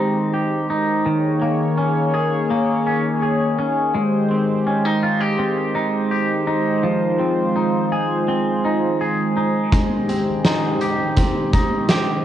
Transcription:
Already playing: D#3 G#3 C4 D#4 G4 C5
0.34 G4
0.70 D#4
1.06 D#3 A#3 G#4 C#5
1.42 A#3
1.78 C#4
2.14 G#4
2.51 A#3
2.87 C#4
3.23 G#4
3.59 C#4
3.95 G#3 G4 C5
4.31 C4
4.67 C#4
4.85 D#4
5.03 F4
5.21 G4
5.39 C4
5.75 D#4
6.11 G4
6.47 D#4
6.83 D#3 F3 F4
7.20 C4
7.56 D#4
7.92 G#4
8.28 C4
8.64 D#4
9.01 G#4
9.37 D#4
9.72 G#3 G4, kick, closed hi-hat
10.09 C4, closed hi-hat
10.45 D#4, snare, closed hi-hat
10.81 G4, closed hi-hat
11.17 C4, kick, closed hi-hat
11.53 D#4, kick, closed hi-hat
11.89 G4, snare, closed hi-hat

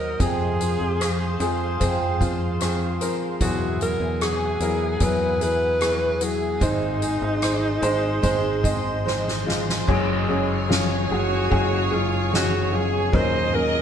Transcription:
Already playing: D#2 D#3 F#3 A#3 D#4 F#4 G#4 A#4 C5 D#5 F#5 D#6
0.19 F2 C3 F3 G#3 C4 G#4 C5 F5 C6, kick, closed hi-hat
0.60 F3 C4 G#4, closed hi-hat
0.81 F2
1.00 F3 C4 G#4, cross-stick, closed hi-hat
1.39 F2 F3 G#3 C4 G#4, closed hi-hat
1.80 F2 C3 F3 G#3 C4 G#4, kick, closed hi-hat
2.20 F3 G#3 C4 F4 G#4, kick, closed hi-hat
2.60 F3 G#3 C4 G#4, cross-stick, closed hi-hat
3.01 F3 C4 A#4, closed hi-hat
3.39 E2 B2 E3 F#3 B3 E4 F#4 G#4 E5 F#5 G#5, kick, closed hi-hat
3.80 F#3 B3 E4 F#4 G#4 A#4, closed hi-hat
4.00 E2
4.21 F#3 E4 G#4, cross-stick, closed hi-hat
4.60 E2 F#3 B3 E4 G#4 A#4, closed hi-hat
5.00 E2 E3 F#3 B3 E4 G#4 B4, kick, closed hi-hat
5.39 F#3 B3 E4 G#4 B4, closed hi-hat
5.79 F#3 B3 E4 G#4, cross-stick, closed hi-hat
6.21 F#3 E4 F#4 G#4, closed hi-hat
6.60 G#1 G#2 D#3 G#3 C4 D#4 G#4 C5 D#5 C6, kick, closed hi-hat
6.64 D#4
7.01 G#3 D#4 G#4, closed hi-hat
7.21 G#1
7.42 G#3 D#4 C5, cross-stick, closed hi-hat
7.81 G#1 G#3 C4 D#4 G#4 C5, closed hi-hat
8.22 G#1 G#2 D#3 G#3 C4 D#4 G#4 C5, kick, closed hi-hat
8.63 G#3 C4 D#4 G#4 D#5, kick, closed hi-hat
9.04 G#3 C4 D#4 G#4 C5, snare
9.28 snare
9.46 G#3 D#4 F4, snare
9.69 snare
9.87 F#1 C#3 F#3 G#3 C#4 F#4 G#4 C#5 G#5, kick, crash
10.28 F#3 G#3 C#4 F#4 G#4, ride
10.69 F#3 G#3 C#4 F4 F#4, snare, ride
11.09 F#1 F#3 G#3 C#4 F#4 G#4, ride
11.14 F#4
11.50 F#1 F#3 G#3 C#4 G#4, kick, ride
11.91 F#3 G#3 C#4 F4 G#4
12.31 F#3 G#3 C#4 D#4 F#4, snare, ride
12.72 F#3 G#3 C#4 F4 G#4, ride
13.12 D#2 A#2 D#3 F#3 A#3 C#4 D#4 F#4 A#4 C5 D#5, kick, ride
13.52 F#3 A#3 C#4 D#4 F#4 A#4, ride

